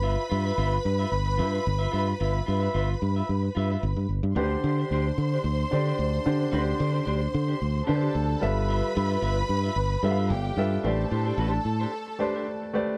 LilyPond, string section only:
\new Staff \with { instrumentName = "String section" } { \time 4/4 \key g \mixolydian \tempo 4 = 111 <b' b''>1~ | <b' b''>2.~ <b' b''>8 r8 | <c'' c'''>1~ | <c'' c'''>2~ <c'' c'''>8 <a' a''>4 <b' b''>8~ |
<b' b''>2. <g' g''>4 | <a' a''>1 | }